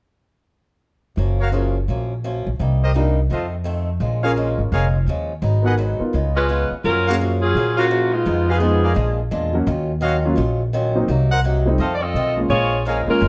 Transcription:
1.16 upright bass F#1, steel-string acoustic guitar F#2 F3 A#3 C#4
1.40 trumpet section F#4 A#4 C#5 F5
1.51 steel-string acoustic guitar F#2 F3 A#3 C#4, grand piano C#4 F4 G#4 A#4
1.88 upright bass A#1, steel-string acoustic guitar F#2 F3 A#3 C#4
2.24 steel-string acoustic guitar F#2 F3 A#3 C#4
2.47 upright bass A#1
2.59 upright bass C2, steel-string acoustic guitar C3 G3 A#3 D#4
2.83 trumpet section G4 A#4 C5 D#5
2.94 steel-string acoustic guitar C3 G3 A#3 D#4, grand piano D4 D#4 G4 A#4
3.30 steel-string acoustic guitar F2 D#3 A3 C4, upright bass F2, trumpet section F4 A4 C5 D#5
3.64 steel-string acoustic guitar F2 D#3 A3 C4
4.00 upright bass A#1, steel-string acoustic guitar A#2 F3 G#3 C#4
4.23 grand piano C#4 F4 G#4 A#4, trumpet section G#4 A#4 C#5 F5
4.36 steel-string acoustic guitar A#2 F3 G#3 C#4
4.58 upright bass G#1
4.72 upright bass F1, steel-string acoustic guitar A#2 F3 G#3 C#4, trumpet section G#4 A#4 C#5 F5
5.06 upright bass D#2, steel-string acoustic guitar A#2 F3 G#3 C#4
5.42 upright bass G#1, steel-string acoustic guitar G#2 F#3 B3 D#4
5.62 grand piano B3 D#4 F#4 A#4, trumpet section G#4 B4 F#5
5.66 trumpet section D#5
5.78 steel-string acoustic guitar G#2 F#3 B3 D#4
5.99 grand piano B3 D#4 F4 A#4, muted upright bass stroke
6.13 upright bass C#2, steel-string acoustic guitar C#3 G#3 B3 F4
6.36 saxophone section G#3 C#4 F4 B4, trumpet section G#4 B4 C#5 D#5
6.49 steel-string acoustic guitar C#3 G#3 B3 F4
6.71 muted upright bass stroke
6.84 upright bass F#2, steel-string acoustic guitar F#2 F3 A#3 C#4, saxophone section F#3 C#4 F4 A#4
7.07 grand piano A#3 C#4 F4 G#4, trumpet section F#4 A#4 C#5 F5
7.20 steel-string acoustic guitar F#2 F3 A#3 C#4
7.42 saxophone section F#3 C#4 F4 G#4
7.55 steel-string acoustic guitar F#2 F3 A#3 C#4, upright bass A#2
7.77 saxophone section C#3 A#3 F4 F#4, trumpet section F#4 A#4 C#5 F5
7.91 steel-string acoustic guitar F#2 F3 A#3 C#4
8.12 saxophone section G#3 B3 D#4 F4
8.25 upright bass F2, steel-string acoustic guitar F3 B3 D#4 G#4
8.48 saxophone section F3 B3 D#4 G#4, trumpet section G#4 B4 D#5 F5
8.60 steel-string acoustic guitar F3 B3 D#4 G#4, grand piano G#3 B3 D#4 F4
8.84 trumpet section G#4 A#4 D5 F5
8.94 upright bass A#1, steel-string acoustic guitar A#2 G#3 D4 F4
9.31 upright bass E2, steel-string acoustic guitar A#2 G#3 D4 F4
9.53 grand piano F#3 A#3 C#4 F#4
9.67 upright bass D#2, steel-string acoustic guitar D#3 F#3 C#4 F4
10.01 steel-string acoustic guitar D#3 F#3 C#4 F4, trumpet section F#4 C#5 D#5 F5
10.25 grand piano F#3 A#3 C#4 F4
10.36 upright bass A#1, steel-string acoustic guitar D#3 F#3 C#4 F4
10.73 steel-string acoustic guitar D#3 F#3 C#4 F4
10.95 grand piano F#3 A#3 C4 D#4
11.08 upright bass C2, steel-string acoustic guitar C3 F#3 A#3 D#4
11.31 trumpet section A#4 C5 D#5 F#5
11.44 steel-string acoustic guitar C3 F#3 A#3 D#4
11.65 grand piano G3 A3 C4 D#4
11.78 steel-string acoustic guitar F2 D#3 A3 C4, upright bass F2, trumpet section A4 C5 D#5 F5
11.95 saxophone section D5
12.01 saxophone section C4 F4 A4 D#5
12.14 upright bass B1, steel-string acoustic guitar F2 D#3 A3 C4
12.37 grand piano G#3 A#3 C#4 F4
12.50 upright bass A#1, steel-string acoustic guitar A#2 F3 G#3 C#4, saxophone section A#3 F4 G#4 C#5
12.85 steel-string acoustic guitar A#2 F3 G#3 C#4, trumpet section G#4 A#4 C#5 F5
13.07 grand piano G#3 A#3 C#4 F4, saxophone section G#3 C#4 F4 A#4, muted upright bass stroke
13.20 upright bass F1, steel-string acoustic guitar A#2 F3 G#3 C#4

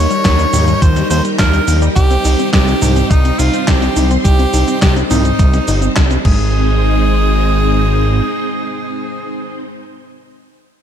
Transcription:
Already playing: string machine G3 D#4 G4 A#4, tenor saxophone C#5
0.11 synth arpeggio sound G3, closed hi-hat, cabasa
0.25 analog synth bass D#2, synth arpeggio sound F3, kick, snare, clap, closed hi-hat, cabasa
0.39 synth arpeggio sound G3, closed hi-hat, cabasa
0.53 analog synth bass D#2, synth arpeggio sound A#3, mid tom, open hi-hat, cabasa
0.68 synth arpeggio sound G3, closed hi-hat, cabasa
0.82 analog synth bass D#2, synth arpeggio sound F3, tenor saxophone C5, kick, closed hi-hat, cabasa
0.96 synth arpeggio sound G3, snare, closed hi-hat, cabasa
1.10 analog synth bass D#2, synth arpeggio sound A#3, tenor saxophone C5, open hi-hat, cabasa
1.25 synth arpeggio sound G3, closed hi-hat, cabasa
1.39 analog synth bass D#2, synth arpeggio sound F3, tenor saxophone A#4, kick, snare, clap, closed hi-hat, cabasa
1.53 synth arpeggio sound G3, closed hi-hat, cabasa
1.68 analog synth bass D#2, synth arpeggio sound A#3, open hi-hat, cabasa
1.82 synth arpeggio sound G3, closed hi-hat, cabasa
1.96 analog synth bass C2, synth arpeggio sound G3, string machine C4 C5, tenor saxophone G4, kick, closed hi-hat, cabasa
2.11 synth arpeggio sound C4, closed hi-hat, cabasa
2.25 analog synth bass C2, synth arpeggio sound D#4, open hi-hat, cabasa
2.39 synth arpeggio sound C4, closed hi-hat, cabasa
2.53 analog synth bass C2, synth arpeggio sound G3, tenor saxophone G4, kick, snare, clap, closed hi-hat, cabasa
2.68 synth arpeggio sound C4, closed hi-hat, cabasa
2.82 analog synth bass C2, synth arpeggio sound D#4, mid tom, open hi-hat, cabasa
2.96 synth arpeggio sound C4, closed hi-hat, cabasa
3.10 analog synth bass C2, synth arpeggio sound G3, tenor saxophone D#4, kick, closed hi-hat, cabasa
3.25 synth arpeggio sound C4, closed hi-hat, cabasa
3.39 analog synth bass C2, synth arpeggio sound D#4, tenor saxophone F4, open hi-hat, cabasa
3.54 synth arpeggio sound C4, closed hi-hat, cabasa
3.68 analog synth bass C2, synth arpeggio sound G3, tenor saxophone G4, kick, snare, clap, closed hi-hat, cabasa
3.82 synth arpeggio sound C4, closed hi-hat, cabasa
3.96 analog synth bass C2, synth arpeggio sound D#4, open hi-hat, cabasa
4.11 synth arpeggio sound C4, closed hi-hat, cabasa
4.25 analog synth bass C2, synth arpeggio sound G3, tenor saxophone G4, kick, closed hi-hat, cabasa
4.39 synth arpeggio sound C4, closed hi-hat, cabasa
4.54 analog synth bass C2, synth arpeggio sound D#4, open hi-hat, cabasa
4.68 synth arpeggio sound C4, closed hi-hat, cabasa
4.82 analog synth bass C2, synth arpeggio sound G3, tenor saxophone G4, kick, snare, clap, closed hi-hat, cabasa
4.96 synth arpeggio sound C4, closed hi-hat, cabasa
5.11 analog synth bass C2, tenor saxophone D#4, synth arpeggio sound D#4, mid tom, open hi-hat, cabasa
5.25 synth arpeggio sound C4, closed hi-hat, cabasa
5.39 analog synth bass C2, synth arpeggio sound G3, kick, closed hi-hat, cabasa
5.54 synth arpeggio sound C4, snare, closed hi-hat, cabasa
5.68 analog synth bass G1, synth arpeggio sound D#4, open hi-hat, cabasa
5.82 synth arpeggio sound C4, closed hi-hat, cabasa
5.96 analog synth bass C2, synth arpeggio sound G3, kick, snare, clap, closed hi-hat, cabasa
6.11 synth arpeggio sound C4, closed hi-hat, cabasa
6.25 analog synth bass G#1, synth arpeggio sound G#3, string machine G#3 C4 D#4 C5, tenor saxophone G#4, kick, crash

